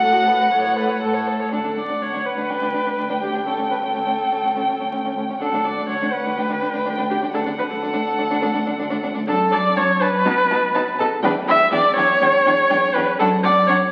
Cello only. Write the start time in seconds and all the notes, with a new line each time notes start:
0.01 A2
0.51 A2
1.02 A2
1.52 D2
1.65 D2
1.77 D2
1.90 D2
2.01 D2
2.14 D2
2.37 D2
2.49 D2
2.62 D2
2.74 D2
2.86 D2
2.98 D2
3.09 D2
3.22 D2
3.34 D2
3.45 D2
3.58 D2
3.70 D2
3.82 D2
3.94 D2
4.06 D2
4.31 D2
4.43 D2
4.55 D2
4.68 D2
4.79 D2
4.91 D2
5.04 D2
5.16 D2
5.28 D2
5.40 D2
5.53 D2
5.65 D2
5.77 D2
5.89 D2
6.02 D2
6.26 D2
6.37 D2
6.50 D2
6.63 D2
6.75 D2
6.87 D2
6.99 D2
7.11 D2
7.23 D2
7.34 D2
7.46 D2
7.59 D2
7.71 D2
7.83 D2
7.95 D2
8.19 D2
8.32 D2
8.43 D2
8.55 D2
8.68 D2
8.80 D2
8.92 D2
9.04 D2
9.16 D2
9.28 F#2
9.53 F#2
9.77 F#2
10.02 F#2
10.26 B2
10.51 B2
10.75 B2
10.99 B2
11.23 E2
11.47 E2
11.72 E2
11.97 E2
12.21 E2
12.46 E2
12.71 E2
12.96 E2
13.20 F#2
13.44 F#2
13.68 F#2